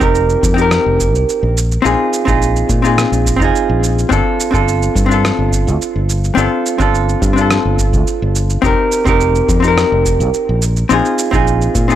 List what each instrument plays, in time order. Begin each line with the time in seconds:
0.00 fingered electric bass F1, hollow-body jazz guitar C4 D#4 G4 A#4, kick, shaker
0.15 shaker
0.30 shaker
0.43 fingered electric bass F2, kick, shaker
0.54 hollow-body jazz guitar C4 D#4, shaker
0.59 hollow-body jazz guitar G4 A#4
0.71 cross-stick, shaker
0.86 fingered electric bass F1
1.00 kick, shaker
1.14 fingered electric bass C2, shaker
1.29 shaker
1.43 fingered electric bass A#1
1.57 shaker
1.72 shaker
1.82 fingered electric bass A#1, hollow-body jazz guitar C4 D#4 F4 G#4, shaker
2.13 shaker
2.25 fingered electric bass A#1, hollow-body jazz guitar C4 D#4 F4 G#4, kick, shaker
2.42 shaker
2.56 shaker
2.69 fingered electric bass A#2, kick, shaker
2.82 hollow-body jazz guitar C4 D#4 F4, shaker
2.86 hollow-body jazz guitar G#4
2.98 cross-stick, shaker
3.12 fingered electric bass A#1, shaker
3.26 kick, shaker
3.36 hollow-body jazz guitar C4 D#4
3.41 fingered electric bass F1, hollow-body jazz guitar F4 G#4, kick, shaker
3.56 shaker
3.69 fingered electric bass A#1
3.84 shaker
3.99 shaker
4.09 fingered electric bass G1, hollow-body jazz guitar C4 D4 F4 A4, kick, shaker
4.40 shaker
4.51 fingered electric bass G1, hollow-body jazz guitar C4 D4 F4 A4, kick, shaker
4.68 shaker
4.83 shaker
4.95 fingered electric bass G2, kick, shaker
5.06 hollow-body jazz guitar C4 D4
5.11 hollow-body jazz guitar F4 A4, shaker
5.25 cross-stick, shaker
5.39 fingered electric bass G1
5.52 kick, shaker
5.67 fingered electric bass D2, shaker
5.82 shaker
5.96 fingered electric bass G1
6.10 shaker
6.24 shaker
6.35 fingered electric bass G1, hollow-body jazz guitar C4 D4 F4 A4, shaker
6.66 shaker
6.78 fingered electric bass G1, hollow-body jazz guitar C4 D4 F4 A4, kick, shaker
6.95 shaker
7.09 shaker
7.22 fingered electric bass G2, kick, shaker
7.33 hollow-body jazz guitar C4 D4
7.38 hollow-body jazz guitar F4 A4, shaker
7.51 cross-stick, shaker
7.65 fingered electric bass G1
7.79 kick, shaker
7.93 fingered electric bass D2, kick, shaker
8.07 shaker
8.22 fingered electric bass G1
8.35 shaker
8.50 shaker
8.62 fingered electric bass F1, hollow-body jazz guitar C4 D#4 G4, kick, shaker
8.66 hollow-body jazz guitar A#4
8.92 shaker
9.05 fingered electric bass F1, hollow-body jazz guitar C4 D#4 G4 A#4, kick, shaker
9.21 shaker
9.35 shaker
9.48 fingered electric bass F2, kick, shaker
9.60 hollow-body jazz guitar C4 D#4, shaker
9.65 hollow-body jazz guitar G4 A#4
9.78 cross-stick, shaker
9.92 fingered electric bass F1
10.05 kick, shaker
10.20 fingered electric bass C2, shaker
10.34 shaker
10.49 fingered electric bass A#1
10.62 shaker
10.77 shaker
10.89 fingered electric bass A#1, hollow-body jazz guitar C4 D#4 F4 G#4, shaker
11.05 shaker
11.19 shaker
11.31 fingered electric bass A#1, hollow-body jazz guitar C4 D#4 F4 G#4, kick, shaker
11.47 shaker
11.62 shaker
11.75 fingered electric bass A#2, kick, shaker
11.88 hollow-body jazz guitar C4 D#4 F4 G#4, shaker